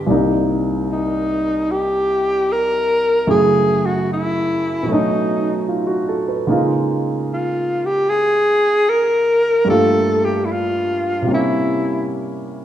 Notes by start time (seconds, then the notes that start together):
Already playing: D3
0.07 C2 C3 A#3 D5
0.11 D#4
0.92 D#4
1.71 G4
2.52 A#4
3.27 F#2 C#3 A3 E4 G#4
3.86 F#4
4.13 E4
4.83 B2 F#3
4.88 A3 C#4 D#4
4.94 D#4
5.68 F4
5.87 F#4
6.08 A4
6.28 B4
6.47 C#3 G#3 A#3 D#4
6.52 F4
7.33 F4
7.85 G4
8.09 G#4
8.89 A#4
9.65 G2 G3 A3
9.69 A#3 F4 A4
10.25 G4
10.45 E4
10.52 F4
11.22 C3
11.26 G3 A#3
11.31 C#4 E4